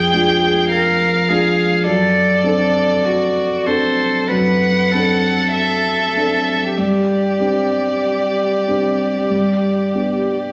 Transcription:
Already playing: grand piano F2 G#3 D4 F4, cello G#4, violin G5
0.14 grand piano G#3 D4 F4
0.69 cello A#4, violin F5
1.29 grand piano G#3 D4 F4, cello G#4
1.83 grand piano F#2, cello A4, violin D5
2.44 grand piano C4 D4 A4, cello A4
3.04 cello F#4
3.66 grand piano C4 D4 A4, cello A4, violin C5
4.28 grand piano F#2, cello B4, violin F#5
4.91 grand piano C4 D4 A4, cello A4
5.54 violin E5
6.16 grand piano C4 D4 A4
6.76 grand piano G2, cello G4, violin D5
7.40 grand piano C4 D4 G4
8.68 grand piano C4 D4 G4
9.30 grand piano G2
9.95 grand piano B3 D4 G4

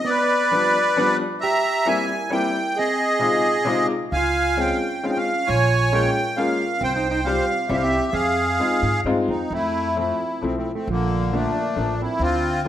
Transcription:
0.05 hollow-body jazz guitar B3, accordion D5
0.09 accordion B4
0.51 upright piano F3 G3 B3 D4
0.96 upright piano F3 G3 B3 D4
1.41 hollow-body jazz guitar G4, accordion E5 A#5
1.85 upright piano G3 A#3 C4 E4, hollow-body jazz guitar E4, accordion G#5
2.30 upright piano G3 A#3 C4 E4, hollow-body jazz guitar E4, accordion G5
2.76 hollow-body jazz guitar C4, accordion G#4 D#5
3.19 upright piano C3 G#3 C4 D#4 F4
3.65 upright piano C3 G#3 C4 D#4 F4
4.12 upright bass C#2, accordion F5 G#5
4.16 hollow-body jazz guitar F4
4.57 upright piano G#3 C4 C#4 F4, hollow-body jazz guitar C#4, accordion G5
5.03 upright piano G#3 C4 C#4 F4, hollow-body jazz guitar C#4, accordion F5
5.10 hollow-body jazz guitar D#4, accordion G5
5.17 hollow-body jazz guitar C#4, accordion F5
5.47 upright bass A#1, hollow-body jazz guitar F4, accordion C#5 G#5
5.92 upright piano G#3 A#3 C#4 F4, hollow-body jazz guitar C#4, accordion G5
6.37 upright piano G#3 A#3 C#4 F4, hollow-body jazz guitar C#4, accordion F5
6.81 upright bass C2, hollow-body jazz guitar C4, accordion C5 G5
6.95 hollow-body jazz guitar D#4, accordion G5
7.10 hollow-body jazz guitar D#4, accordion G5
7.25 upright piano G3 C4 F4 G4, hollow-body jazz guitar C4, accordion F5
7.68 upright bass C2, upright piano G3 C4 E4 G4, hollow-body jazz guitar C4, accordion G4 E5
7.74 hollow-body jazz guitar C#4, accordion F5
7.82 hollow-body jazz guitar C4, accordion E5
8.12 upright bass F2, hollow-body jazz guitar C4, accordion G#4 F5
8.60 upright piano G#3 C4 D#4 F4
8.82 upright bass G#2
9.04 upright bass G2, upright piano G#3 C4 D#4 F4
9.28 upright bass F2, hollow-body jazz guitar C4, accordion D#4
9.51 upright bass F2, accordion A3 E4, hollow-body jazz guitar C4
9.96 upright piano F3 A3 C4 E4, hollow-body jazz guitar C4, accordion E4
10.41 upright bass B1, upright piano F3 A3 C4 E4, hollow-body jazz guitar A3, accordion C4
10.57 hollow-body jazz guitar A3, accordion C4
10.73 hollow-body jazz guitar A3, accordion C4
10.88 upright bass A#1, accordion D3 A#3, hollow-body jazz guitar F3
11.32 upright piano F3 A3 A#3 D4, accordion A3 D4, hollow-body jazz guitar A#3
11.76 upright bass A1, upright piano F3 A3 A#3 D4
12.02 hollow-body jazz guitar C4, accordion E4
12.19 upright bass D2, accordion C4 F4, hollow-body jazz guitar D4
12.65 upright piano F3 A3

